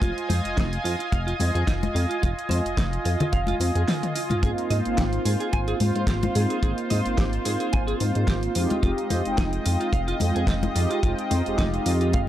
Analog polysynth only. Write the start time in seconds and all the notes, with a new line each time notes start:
4.43 A#3 C4 D#4 F4
4.85 A#3 C4 D#4 F4
6.35 A#3 C4 D#4 F4
6.62 A#3 C4 D#4 F4
7.04 A#3 C4 D#4 F4
8.55 G#3 C4 D#4 G4
8.83 G#3 C4 D#4 G4
9.25 G#3 C4 D#4 G5
10.75 G#3 C4 D#4 G4
11.03 G#3 C4 D#4 G5
11.45 G#3 C4 D#4 G4